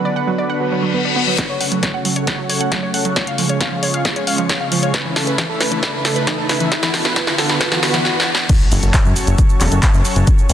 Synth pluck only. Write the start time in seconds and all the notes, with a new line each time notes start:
0.05 D5
0.16 F#5
0.27 F#3
0.38 D5
0.50 F#5
0.61 F#3
0.72 F#3
0.83 F#3
0.94 B3
1.05 D4
1.16 B3
1.27 F#3
1.38 F#3
1.49 C#5
1.61 F#5
1.72 F#3
1.83 C#5
1.94 F#5
2.05 F#3
2.16 C#5
2.27 F#5
2.38 F#3
2.50 C#5
2.61 F#5
2.72 F#3
2.83 C#5
2.94 F#5
3.05 F#3
3.16 C#5
3.27 F5
3.38 F3
3.50 C#5
3.61 F5
3.72 F3
3.83 C#5
3.94 F5
4.05 F3
4.16 C#5
4.27 F5
4.38 F3
4.50 C#5
4.61 F5
4.72 F3
4.83 C#5
4.94 B4
5.05 E3
5.16 A4
5.27 B4
5.38 E3
5.49 A4
5.61 B4
5.72 E3
5.83 B4
5.94 E3
6.05 A4
6.16 B4
6.27 E3
6.38 A4
6.49 B4
6.61 E3
6.72 B4
6.83 E3
6.94 A4
7.05 B4
7.16 B4
7.27 E3
7.38 A4
7.50 B4
7.61 B4
7.72 E3
7.83 B4
7.94 E3